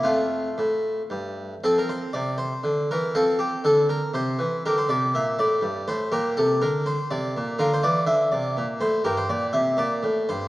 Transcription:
<<
  \new Staff \with { instrumentName = "Harpsichord" } { \time 3/4 \key f \major \tempo 4 = 121 << { f'2 r4 | a'16 bes'16 c''8 d''8 c''4 bes'8 | a'8 g'8 a'8 bes'8 c''4 | bes'16 c''16 d''8 e''8 d''4 c''8 |
bes'8 a'8 bes'8 c''8 d''4 | \key bes \lydian bes'16 c''16 d''8 e''8 d''4 c''8 | bes'16 c''16 d''8 e''8 d''4 c''8 | } \\ { a2. | c'2. | c'2. | g'2. |
g'2. | f'2. | g'2. | } >> }
  \new Staff \with { instrumentName = "Harpsichord" } { \clef bass \time 3/4 \key f \major f,4 a,4 g,4 | f4 c4 d8 e8 | f4 d4 c8 e8 | d8 c8 bes,8 a,8 g,8 a,8 |
bes,8 c8 d4 c8 bes,8 | \key bes \lydian d8 e8 d8 c8 bes,8 a,8 | g,8 bes,8 c8 bes,8 a,8 g,8 | }
>>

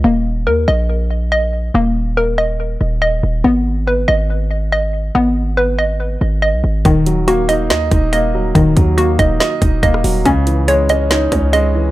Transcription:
<<
  \new Staff \with { instrumentName = "Synth pluck" } { \time 4/4 \key ees \phrygian \tempo 4 = 141 bes4 bes'8 ees''4. ees''4 | bes4 bes'8 ees''4. ees''4 | ces'4 ces''8 ees''4. ees''4 | ces'4 ces''8 ees''4. ees''4 |
ees4 ges'8 ees''4. ees''4 | ees4 ges'8 ees''4. ees''4 | des'4 des''8 ees''4. ees''4 | }
  \new Staff \with { instrumentName = "Grand piano" } { \time 4/4 \key ees \phrygian r1 | r1 | r1 | r1 |
ees8 ges8 bes8 ees'8 ees''8 ees'8 bes8 ges8 | ees8 ges8 bes8 ees'8 ees''8 ees'8 bes8 ges8 | des8 fes8 aes8 des'8 ees'8 des'8 aes8 fes8 | }
  \new Staff \with { instrumentName = "808-style bass" } { \clef bass \time 4/4 \key ees \phrygian ees,,4 ees,8 bes,,2~ bes,,8 | ees,,2~ ees,,8 ees,,4 ees,,8 | aes,,4. aes,,2~ aes,,8 | aes,,2~ aes,,8 aes,,8. ces,16 aes,,8 |
ees,,2 ees,8 ees,,4. | ees,,8 ees,4 ees,,8 r8 ees,,8 ees,,8 ees,,8 | des,2~ des,8 des,4. | }
  \new DrumStaff \with { instrumentName = "Drums" } \drummode { \time 4/4 r4 r4 r4 r4 | r4 r4 r4 r4 | r4 r4 r4 r4 | r4 r4 r4 r4 |
<hh bd>8 hh8 hh8 hh8 <hh sn>8 <hh bd>8 hh4 | <hh bd>8 <hh bd>8 hh8 <hh bd>8 <hh sn>8 <hh bd>8 <hh bd>16 ss16 hho8 | <hh bd>8 hh8 hh8 hh8 <hh sn>8 <hh bd>8 hh4 | }
>>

